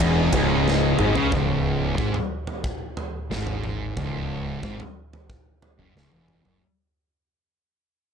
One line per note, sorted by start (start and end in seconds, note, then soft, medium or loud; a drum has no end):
0.00 0.31 E1 loud
0.00 0.32 E2 loud
0.00 1.28 C#3 medium
0.00 1.28 G#3 medium
0.00 1.28 D#4 medium
0.00 kick loud
0.00 ride loud
0.33 0.95 C#1 loud
0.33 0.98 C#2 loud
0.33 kick loud
0.33 ride medium
0.68 snare medium
0.98 1.14 G#1 loud
0.98 1.15 G#2 loud
0.98 mid tom medium
1.15 1.30 C#2 medium
1.15 1.31 C#3 loud
1.15 floor tom loud
1.32 1.94 C#1 medium
1.32 1.97 C#2 loud
1.32 kick loud
1.32 floor tom medium
1.98 2.14 G#2 loud
1.98 kick loud
2.14 floor tom medium
2.47 floor tom medium
2.64 kick loud
2.97 floor tom medium
3.30 3.92 G#1 medium
3.30 3.96 G#2 medium
3.30 snare medium
3.47 floor tom medium
3.64 mid tom medium
3.97 4.59 C#1 medium
3.97 4.62 C#2 loud
3.97 kick loud
3.97 floor tom medium
4.63 4.78 G#1 medium
4.63 4.79 G#2 loud
4.63 kick loud
4.80 floor tom medium
5.13 floor tom medium
5.30 kick loud
5.62 floor tom medium
5.79 5.94 F#1 medium
5.79 5.95 F#2 loud
5.96 6.11 C#1 medium
5.96 6.12 C#2 loud
5.96 snare medium
6.12 6.43 E1 medium
6.12 6.45 E2 medium
6.12 high tom medium
6.28 mid tom medium
6.45 6.61 F#1 medium
6.45 6.61 F#2 medium
6.45 floor tom medium